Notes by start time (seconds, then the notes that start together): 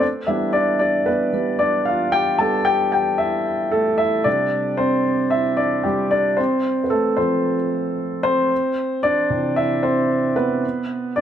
0.02 D4
0.27 G3 B3 D4 E4 E5
0.53 D4 D5
0.79 D4 D5
1.06 B3 B4
1.33 G3 B3 D4
1.59 D4 D5
1.85 F4 F5
2.12 G4 G5
2.39 G3 B3 D4 A4 A5
2.65 G4 G5
2.92 G4 G5
3.18 E4 E5
3.71 A3 A4
3.98 E4 E5
4.24 C3 G3 D4 D5
4.77 C4 C5
5.30 E4 E5
5.57 D4 D5
5.84 G3 G4
6.11 D4 D5
6.37 C4 C5
6.84 B4
6.90 A3 A4
7.17 F3 A3 C4 C5
8.23 C4 C5
9.03 D4 D5
9.30 C3 E3 C4
9.56 E4 E5
9.83 C4 C5
10.36 B3 B4
11.16 D4 D5